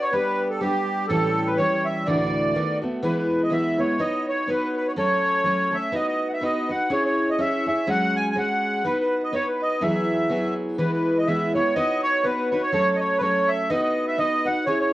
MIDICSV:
0, 0, Header, 1, 3, 480
1, 0, Start_track
1, 0, Tempo, 484653
1, 132, Time_signature, 2, 2, 24, 8
1, 14787, End_track
2, 0, Start_track
2, 0, Title_t, "Accordion"
2, 0, Program_c, 0, 21
2, 21, Note_on_c, 0, 73, 99
2, 125, Note_on_c, 0, 71, 97
2, 132, Note_off_c, 0, 73, 0
2, 476, Note_off_c, 0, 71, 0
2, 496, Note_on_c, 0, 69, 76
2, 597, Note_off_c, 0, 69, 0
2, 598, Note_on_c, 0, 67, 106
2, 1049, Note_off_c, 0, 67, 0
2, 1068, Note_on_c, 0, 69, 114
2, 1450, Note_on_c, 0, 71, 90
2, 1465, Note_off_c, 0, 69, 0
2, 1561, Note_on_c, 0, 73, 99
2, 1565, Note_off_c, 0, 71, 0
2, 1831, Note_on_c, 0, 76, 88
2, 1844, Note_off_c, 0, 73, 0
2, 2035, Note_on_c, 0, 74, 102
2, 2050, Note_off_c, 0, 76, 0
2, 2752, Note_off_c, 0, 74, 0
2, 3006, Note_on_c, 0, 71, 83
2, 3129, Note_off_c, 0, 71, 0
2, 3144, Note_on_c, 0, 71, 69
2, 3389, Note_off_c, 0, 71, 0
2, 3395, Note_on_c, 0, 75, 75
2, 3490, Note_on_c, 0, 76, 93
2, 3495, Note_off_c, 0, 75, 0
2, 3760, Note_on_c, 0, 73, 77
2, 3767, Note_off_c, 0, 76, 0
2, 3960, Note_on_c, 0, 75, 88
2, 3973, Note_off_c, 0, 73, 0
2, 4214, Note_off_c, 0, 75, 0
2, 4245, Note_on_c, 0, 73, 86
2, 4451, Note_on_c, 0, 71, 88
2, 4455, Note_off_c, 0, 73, 0
2, 4707, Note_off_c, 0, 71, 0
2, 4722, Note_on_c, 0, 71, 74
2, 4826, Note_off_c, 0, 71, 0
2, 4832, Note_on_c, 0, 73, 78
2, 4876, Note_off_c, 0, 73, 0
2, 4934, Note_on_c, 0, 73, 104
2, 5684, Note_on_c, 0, 76, 93
2, 5702, Note_off_c, 0, 73, 0
2, 5892, Note_on_c, 0, 75, 98
2, 5894, Note_off_c, 0, 76, 0
2, 6011, Note_off_c, 0, 75, 0
2, 6025, Note_on_c, 0, 75, 94
2, 6221, Note_off_c, 0, 75, 0
2, 6224, Note_on_c, 0, 78, 59
2, 6254, Note_off_c, 0, 78, 0
2, 6270, Note_on_c, 0, 76, 86
2, 6372, Note_off_c, 0, 76, 0
2, 6374, Note_on_c, 0, 75, 96
2, 6644, Note_on_c, 0, 78, 95
2, 6647, Note_off_c, 0, 75, 0
2, 6854, Note_off_c, 0, 78, 0
2, 6858, Note_on_c, 0, 73, 95
2, 6972, Note_off_c, 0, 73, 0
2, 6987, Note_on_c, 0, 73, 88
2, 7230, Note_off_c, 0, 73, 0
2, 7231, Note_on_c, 0, 75, 88
2, 7332, Note_off_c, 0, 75, 0
2, 7333, Note_on_c, 0, 76, 103
2, 7592, Note_off_c, 0, 76, 0
2, 7606, Note_on_c, 0, 76, 94
2, 7815, Note_off_c, 0, 76, 0
2, 7823, Note_on_c, 0, 78, 123
2, 8082, Note_on_c, 0, 80, 100
2, 8092, Note_off_c, 0, 78, 0
2, 8209, Note_off_c, 0, 80, 0
2, 8224, Note_on_c, 0, 80, 78
2, 8284, Note_off_c, 0, 80, 0
2, 8304, Note_on_c, 0, 78, 106
2, 8775, Note_on_c, 0, 71, 93
2, 8788, Note_off_c, 0, 78, 0
2, 8894, Note_off_c, 0, 71, 0
2, 8909, Note_on_c, 0, 71, 75
2, 9128, Note_off_c, 0, 71, 0
2, 9149, Note_on_c, 0, 75, 83
2, 9251, Note_off_c, 0, 75, 0
2, 9252, Note_on_c, 0, 73, 101
2, 9385, Note_on_c, 0, 71, 80
2, 9387, Note_off_c, 0, 73, 0
2, 9521, Note_off_c, 0, 71, 0
2, 9529, Note_on_c, 0, 75, 99
2, 9730, Note_on_c, 0, 76, 86
2, 9737, Note_off_c, 0, 75, 0
2, 10439, Note_off_c, 0, 76, 0
2, 10679, Note_on_c, 0, 71, 91
2, 10808, Note_off_c, 0, 71, 0
2, 10826, Note_on_c, 0, 71, 74
2, 11070, Note_off_c, 0, 71, 0
2, 11073, Note_on_c, 0, 75, 88
2, 11162, Note_on_c, 0, 76, 83
2, 11174, Note_off_c, 0, 75, 0
2, 11415, Note_off_c, 0, 76, 0
2, 11434, Note_on_c, 0, 73, 85
2, 11629, Note_off_c, 0, 73, 0
2, 11641, Note_on_c, 0, 75, 104
2, 11895, Note_off_c, 0, 75, 0
2, 11914, Note_on_c, 0, 73, 103
2, 12121, Note_on_c, 0, 71, 86
2, 12131, Note_off_c, 0, 73, 0
2, 12375, Note_off_c, 0, 71, 0
2, 12390, Note_on_c, 0, 71, 79
2, 12499, Note_on_c, 0, 73, 84
2, 12501, Note_off_c, 0, 71, 0
2, 12596, Note_off_c, 0, 73, 0
2, 12611, Note_on_c, 0, 73, 106
2, 12833, Note_on_c, 0, 75, 74
2, 12839, Note_off_c, 0, 73, 0
2, 12874, Note_on_c, 0, 73, 97
2, 12878, Note_off_c, 0, 75, 0
2, 13053, Note_on_c, 0, 71, 75
2, 13054, Note_off_c, 0, 73, 0
2, 13084, Note_on_c, 0, 73, 103
2, 13088, Note_off_c, 0, 71, 0
2, 13351, Note_on_c, 0, 76, 100
2, 13365, Note_off_c, 0, 73, 0
2, 13562, Note_on_c, 0, 75, 92
2, 13570, Note_off_c, 0, 76, 0
2, 13680, Note_off_c, 0, 75, 0
2, 13695, Note_on_c, 0, 75, 97
2, 13922, Note_off_c, 0, 75, 0
2, 13945, Note_on_c, 0, 76, 95
2, 14049, Note_on_c, 0, 75, 111
2, 14052, Note_off_c, 0, 76, 0
2, 14323, Note_on_c, 0, 78, 98
2, 14328, Note_off_c, 0, 75, 0
2, 14516, Note_off_c, 0, 78, 0
2, 14519, Note_on_c, 0, 73, 100
2, 14645, Note_off_c, 0, 73, 0
2, 14660, Note_on_c, 0, 73, 84
2, 14787, Note_off_c, 0, 73, 0
2, 14787, End_track
3, 0, Start_track
3, 0, Title_t, "Steel-string acoustic guitar"
3, 0, Program_c, 1, 25
3, 0, Note_on_c, 1, 59, 66
3, 0, Note_on_c, 1, 62, 65
3, 0, Note_on_c, 1, 66, 67
3, 0, Note_on_c, 1, 71, 68
3, 117, Note_off_c, 1, 59, 0
3, 124, Note_off_c, 1, 62, 0
3, 127, Note_on_c, 1, 55, 71
3, 129, Note_on_c, 1, 59, 74
3, 132, Note_off_c, 1, 66, 0
3, 135, Note_off_c, 1, 71, 0
3, 136, Note_on_c, 1, 62, 80
3, 139, Note_on_c, 1, 67, 83
3, 590, Note_off_c, 1, 55, 0
3, 600, Note_off_c, 1, 59, 0
3, 602, Note_on_c, 1, 55, 70
3, 606, Note_off_c, 1, 62, 0
3, 611, Note_off_c, 1, 67, 0
3, 612, Note_on_c, 1, 59, 66
3, 618, Note_on_c, 1, 62, 75
3, 623, Note_on_c, 1, 67, 77
3, 1078, Note_off_c, 1, 55, 0
3, 1085, Note_on_c, 1, 45, 74
3, 1086, Note_off_c, 1, 59, 0
3, 1086, Note_off_c, 1, 67, 0
3, 1087, Note_on_c, 1, 52, 82
3, 1090, Note_off_c, 1, 62, 0
3, 1090, Note_on_c, 1, 55, 89
3, 1094, Note_on_c, 1, 61, 74
3, 1098, Note_on_c, 1, 67, 99
3, 1555, Note_off_c, 1, 52, 0
3, 1561, Note_off_c, 1, 55, 0
3, 1566, Note_off_c, 1, 45, 0
3, 1566, Note_off_c, 1, 61, 0
3, 1567, Note_on_c, 1, 52, 73
3, 1573, Note_off_c, 1, 67, 0
3, 1573, Note_on_c, 1, 55, 65
3, 1578, Note_on_c, 1, 61, 69
3, 1584, Note_on_c, 1, 67, 74
3, 2040, Note_off_c, 1, 52, 0
3, 2045, Note_on_c, 1, 38, 77
3, 2049, Note_on_c, 1, 45, 75
3, 2050, Note_off_c, 1, 55, 0
3, 2052, Note_off_c, 1, 61, 0
3, 2052, Note_on_c, 1, 52, 80
3, 2055, Note_off_c, 1, 67, 0
3, 2057, Note_on_c, 1, 57, 67
3, 2058, Note_on_c, 1, 62, 83
3, 2059, Note_on_c, 1, 66, 90
3, 2518, Note_off_c, 1, 52, 0
3, 2522, Note_on_c, 1, 51, 63
3, 2525, Note_off_c, 1, 38, 0
3, 2525, Note_off_c, 1, 57, 0
3, 2527, Note_off_c, 1, 45, 0
3, 2527, Note_off_c, 1, 66, 0
3, 2530, Note_on_c, 1, 59, 71
3, 2532, Note_off_c, 1, 62, 0
3, 2536, Note_on_c, 1, 57, 66
3, 2539, Note_on_c, 1, 66, 68
3, 2775, Note_off_c, 1, 66, 0
3, 2787, Note_off_c, 1, 57, 0
3, 2787, Note_on_c, 1, 66, 58
3, 2795, Note_off_c, 1, 51, 0
3, 2795, Note_off_c, 1, 59, 0
3, 2799, Note_on_c, 1, 57, 54
3, 2806, Note_on_c, 1, 59, 46
3, 2992, Note_off_c, 1, 59, 0
3, 2996, Note_on_c, 1, 52, 84
3, 2999, Note_off_c, 1, 57, 0
3, 3000, Note_on_c, 1, 56, 80
3, 3001, Note_off_c, 1, 66, 0
3, 3003, Note_on_c, 1, 59, 76
3, 3012, Note_on_c, 1, 64, 96
3, 3456, Note_off_c, 1, 52, 0
3, 3462, Note_off_c, 1, 56, 0
3, 3468, Note_on_c, 1, 52, 69
3, 3472, Note_off_c, 1, 59, 0
3, 3474, Note_on_c, 1, 56, 67
3, 3477, Note_off_c, 1, 64, 0
3, 3484, Note_on_c, 1, 59, 67
3, 3489, Note_on_c, 1, 64, 71
3, 3731, Note_off_c, 1, 64, 0
3, 3741, Note_off_c, 1, 59, 0
3, 3743, Note_on_c, 1, 64, 57
3, 3748, Note_off_c, 1, 52, 0
3, 3751, Note_off_c, 1, 56, 0
3, 3753, Note_on_c, 1, 59, 48
3, 3764, Note_on_c, 1, 56, 43
3, 3944, Note_off_c, 1, 59, 0
3, 3956, Note_on_c, 1, 59, 74
3, 3957, Note_off_c, 1, 56, 0
3, 3958, Note_off_c, 1, 64, 0
3, 3961, Note_on_c, 1, 63, 85
3, 3964, Note_on_c, 1, 66, 70
3, 3966, Note_on_c, 1, 73, 72
3, 4421, Note_off_c, 1, 59, 0
3, 4431, Note_off_c, 1, 63, 0
3, 4433, Note_on_c, 1, 59, 62
3, 4443, Note_off_c, 1, 73, 0
3, 4443, Note_on_c, 1, 63, 61
3, 4444, Note_off_c, 1, 66, 0
3, 4448, Note_on_c, 1, 66, 72
3, 4455, Note_on_c, 1, 73, 73
3, 4910, Note_off_c, 1, 59, 0
3, 4914, Note_on_c, 1, 54, 66
3, 4915, Note_off_c, 1, 63, 0
3, 4919, Note_on_c, 1, 61, 73
3, 4923, Note_off_c, 1, 66, 0
3, 4924, Note_off_c, 1, 73, 0
3, 4927, Note_on_c, 1, 57, 72
3, 4928, Note_on_c, 1, 69, 92
3, 5373, Note_off_c, 1, 54, 0
3, 5384, Note_off_c, 1, 61, 0
3, 5385, Note_on_c, 1, 54, 59
3, 5392, Note_off_c, 1, 57, 0
3, 5396, Note_on_c, 1, 61, 67
3, 5398, Note_off_c, 1, 69, 0
3, 5404, Note_on_c, 1, 57, 66
3, 5410, Note_on_c, 1, 69, 77
3, 5644, Note_off_c, 1, 69, 0
3, 5656, Note_on_c, 1, 69, 61
3, 5657, Note_off_c, 1, 57, 0
3, 5665, Note_off_c, 1, 54, 0
3, 5668, Note_off_c, 1, 61, 0
3, 5669, Note_on_c, 1, 57, 50
3, 5680, Note_on_c, 1, 61, 40
3, 5862, Note_on_c, 1, 59, 72
3, 5867, Note_off_c, 1, 61, 0
3, 5869, Note_off_c, 1, 57, 0
3, 5871, Note_on_c, 1, 63, 72
3, 5873, Note_on_c, 1, 66, 78
3, 5874, Note_off_c, 1, 69, 0
3, 5879, Note_on_c, 1, 71, 81
3, 6340, Note_off_c, 1, 59, 0
3, 6347, Note_off_c, 1, 63, 0
3, 6351, Note_on_c, 1, 59, 63
3, 6355, Note_off_c, 1, 66, 0
3, 6357, Note_off_c, 1, 71, 0
3, 6359, Note_on_c, 1, 63, 66
3, 6367, Note_on_c, 1, 66, 72
3, 6369, Note_on_c, 1, 71, 68
3, 6614, Note_off_c, 1, 71, 0
3, 6625, Note_off_c, 1, 66, 0
3, 6626, Note_on_c, 1, 71, 49
3, 6628, Note_off_c, 1, 59, 0
3, 6632, Note_off_c, 1, 63, 0
3, 6637, Note_on_c, 1, 66, 50
3, 6646, Note_on_c, 1, 63, 38
3, 6833, Note_on_c, 1, 61, 76
3, 6837, Note_off_c, 1, 63, 0
3, 6839, Note_off_c, 1, 71, 0
3, 6841, Note_off_c, 1, 66, 0
3, 6841, Note_on_c, 1, 64, 72
3, 6845, Note_on_c, 1, 68, 83
3, 6848, Note_on_c, 1, 73, 77
3, 7305, Note_off_c, 1, 61, 0
3, 7315, Note_off_c, 1, 64, 0
3, 7317, Note_on_c, 1, 61, 67
3, 7321, Note_off_c, 1, 68, 0
3, 7325, Note_off_c, 1, 73, 0
3, 7327, Note_on_c, 1, 64, 53
3, 7333, Note_on_c, 1, 68, 63
3, 7338, Note_on_c, 1, 73, 64
3, 7577, Note_off_c, 1, 73, 0
3, 7589, Note_off_c, 1, 68, 0
3, 7589, Note_on_c, 1, 73, 56
3, 7591, Note_off_c, 1, 61, 0
3, 7596, Note_off_c, 1, 64, 0
3, 7601, Note_on_c, 1, 68, 47
3, 7611, Note_on_c, 1, 64, 45
3, 7793, Note_on_c, 1, 54, 74
3, 7795, Note_off_c, 1, 64, 0
3, 7796, Note_off_c, 1, 68, 0
3, 7797, Note_on_c, 1, 56, 78
3, 7799, Note_on_c, 1, 61, 79
3, 7800, Note_off_c, 1, 73, 0
3, 7803, Note_on_c, 1, 66, 81
3, 7808, Note_on_c, 1, 68, 81
3, 8262, Note_off_c, 1, 56, 0
3, 8267, Note_off_c, 1, 61, 0
3, 8274, Note_on_c, 1, 56, 65
3, 8279, Note_on_c, 1, 61, 59
3, 8283, Note_off_c, 1, 66, 0
3, 8283, Note_off_c, 1, 68, 0
3, 8287, Note_on_c, 1, 66, 61
3, 8295, Note_on_c, 1, 68, 68
3, 8303, Note_off_c, 1, 54, 0
3, 8755, Note_off_c, 1, 56, 0
3, 8758, Note_off_c, 1, 66, 0
3, 8759, Note_on_c, 1, 59, 69
3, 8761, Note_off_c, 1, 61, 0
3, 8766, Note_on_c, 1, 63, 66
3, 8768, Note_off_c, 1, 68, 0
3, 8770, Note_on_c, 1, 66, 85
3, 8771, Note_on_c, 1, 71, 80
3, 9232, Note_off_c, 1, 59, 0
3, 9233, Note_off_c, 1, 63, 0
3, 9236, Note_on_c, 1, 59, 70
3, 9238, Note_off_c, 1, 66, 0
3, 9245, Note_on_c, 1, 63, 69
3, 9250, Note_on_c, 1, 66, 62
3, 9254, Note_off_c, 1, 71, 0
3, 9258, Note_on_c, 1, 71, 70
3, 9714, Note_off_c, 1, 59, 0
3, 9714, Note_on_c, 1, 52, 70
3, 9718, Note_on_c, 1, 54, 85
3, 9721, Note_off_c, 1, 63, 0
3, 9723, Note_off_c, 1, 66, 0
3, 9725, Note_on_c, 1, 59, 65
3, 9726, Note_off_c, 1, 71, 0
3, 9727, Note_on_c, 1, 64, 74
3, 9730, Note_on_c, 1, 68, 82
3, 10184, Note_off_c, 1, 54, 0
3, 10196, Note_on_c, 1, 54, 67
3, 10199, Note_off_c, 1, 52, 0
3, 10199, Note_off_c, 1, 59, 0
3, 10199, Note_off_c, 1, 64, 0
3, 10203, Note_on_c, 1, 59, 68
3, 10204, Note_off_c, 1, 68, 0
3, 10210, Note_on_c, 1, 64, 73
3, 10216, Note_on_c, 1, 68, 57
3, 10674, Note_off_c, 1, 54, 0
3, 10675, Note_off_c, 1, 59, 0
3, 10678, Note_on_c, 1, 52, 79
3, 10680, Note_off_c, 1, 64, 0
3, 10685, Note_on_c, 1, 56, 75
3, 10687, Note_on_c, 1, 59, 88
3, 10688, Note_off_c, 1, 68, 0
3, 10692, Note_on_c, 1, 64, 71
3, 11152, Note_off_c, 1, 52, 0
3, 11159, Note_off_c, 1, 56, 0
3, 11164, Note_on_c, 1, 52, 59
3, 11166, Note_off_c, 1, 59, 0
3, 11169, Note_off_c, 1, 64, 0
3, 11171, Note_on_c, 1, 56, 79
3, 11179, Note_on_c, 1, 59, 66
3, 11184, Note_on_c, 1, 64, 76
3, 11427, Note_off_c, 1, 64, 0
3, 11435, Note_off_c, 1, 52, 0
3, 11435, Note_off_c, 1, 59, 0
3, 11439, Note_off_c, 1, 56, 0
3, 11439, Note_on_c, 1, 64, 54
3, 11447, Note_on_c, 1, 59, 51
3, 11460, Note_on_c, 1, 56, 45
3, 11636, Note_off_c, 1, 59, 0
3, 11646, Note_off_c, 1, 56, 0
3, 11646, Note_off_c, 1, 64, 0
3, 11648, Note_on_c, 1, 59, 77
3, 11650, Note_on_c, 1, 63, 74
3, 11653, Note_on_c, 1, 66, 83
3, 11660, Note_on_c, 1, 73, 89
3, 12115, Note_off_c, 1, 59, 0
3, 12121, Note_off_c, 1, 63, 0
3, 12126, Note_on_c, 1, 59, 68
3, 12133, Note_off_c, 1, 73, 0
3, 12133, Note_on_c, 1, 63, 70
3, 12137, Note_off_c, 1, 66, 0
3, 12141, Note_on_c, 1, 66, 64
3, 12149, Note_on_c, 1, 73, 83
3, 12388, Note_off_c, 1, 73, 0
3, 12396, Note_off_c, 1, 66, 0
3, 12397, Note_off_c, 1, 59, 0
3, 12400, Note_on_c, 1, 73, 61
3, 12401, Note_off_c, 1, 63, 0
3, 12408, Note_on_c, 1, 66, 50
3, 12418, Note_on_c, 1, 63, 50
3, 12602, Note_off_c, 1, 63, 0
3, 12602, Note_on_c, 1, 54, 82
3, 12606, Note_on_c, 1, 61, 71
3, 12607, Note_off_c, 1, 73, 0
3, 12609, Note_off_c, 1, 66, 0
3, 12613, Note_on_c, 1, 57, 77
3, 12615, Note_on_c, 1, 69, 87
3, 13067, Note_off_c, 1, 54, 0
3, 13077, Note_off_c, 1, 61, 0
3, 13079, Note_on_c, 1, 54, 69
3, 13084, Note_off_c, 1, 57, 0
3, 13088, Note_off_c, 1, 69, 0
3, 13089, Note_on_c, 1, 61, 72
3, 13096, Note_on_c, 1, 57, 72
3, 13100, Note_on_c, 1, 69, 75
3, 13563, Note_off_c, 1, 54, 0
3, 13566, Note_off_c, 1, 61, 0
3, 13569, Note_on_c, 1, 59, 86
3, 13570, Note_on_c, 1, 63, 96
3, 13572, Note_off_c, 1, 57, 0
3, 13574, Note_off_c, 1, 69, 0
3, 13576, Note_on_c, 1, 66, 86
3, 13581, Note_on_c, 1, 71, 89
3, 14034, Note_off_c, 1, 59, 0
3, 14041, Note_off_c, 1, 63, 0
3, 14046, Note_on_c, 1, 59, 64
3, 14049, Note_off_c, 1, 66, 0
3, 14053, Note_on_c, 1, 63, 60
3, 14055, Note_off_c, 1, 71, 0
3, 14061, Note_on_c, 1, 66, 62
3, 14068, Note_on_c, 1, 71, 66
3, 14302, Note_off_c, 1, 71, 0
3, 14313, Note_on_c, 1, 71, 60
3, 14316, Note_off_c, 1, 66, 0
3, 14319, Note_off_c, 1, 59, 0
3, 14322, Note_off_c, 1, 63, 0
3, 14328, Note_on_c, 1, 66, 48
3, 14337, Note_on_c, 1, 63, 47
3, 14526, Note_off_c, 1, 71, 0
3, 14527, Note_on_c, 1, 61, 68
3, 14529, Note_off_c, 1, 63, 0
3, 14531, Note_off_c, 1, 66, 0
3, 14533, Note_on_c, 1, 64, 72
3, 14535, Note_on_c, 1, 68, 77
3, 14541, Note_on_c, 1, 73, 80
3, 14787, Note_off_c, 1, 61, 0
3, 14787, Note_off_c, 1, 64, 0
3, 14787, Note_off_c, 1, 68, 0
3, 14787, Note_off_c, 1, 73, 0
3, 14787, End_track
0, 0, End_of_file